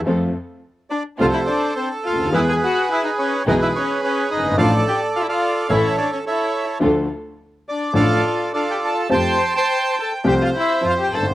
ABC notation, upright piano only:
X:1
M:4/4
L:1/16
Q:1/4=106
K:F
V:1 name="Upright piano" clef=bass
[F,,F,A,CA]2 z6 [C,,C,F,A,CA]2 z4 z/2 ^C,,/2 D,,/2 _E,,/2 | [E,,E,^G,=B,^G]2 z6 [=B,,,=B,,E,G,B,G]2 z4 z/2 ^F,,,/2 =G,,,/2 ^G,,,/2 | [A,,,A,,F,A,DA]2 z6 [A,,,A,,E,A,^CA]2 z6 | [D,,D,F,A,DA]2 z6 [A,,,A,,F,A,DA]2 z6 |
[F,,F,A,CG]2 z6 [C,,C,F,A,CG]2 z2 [F,,F,]2 z/2 G,,,/2 _A,,,/2 =A,,,/2 |]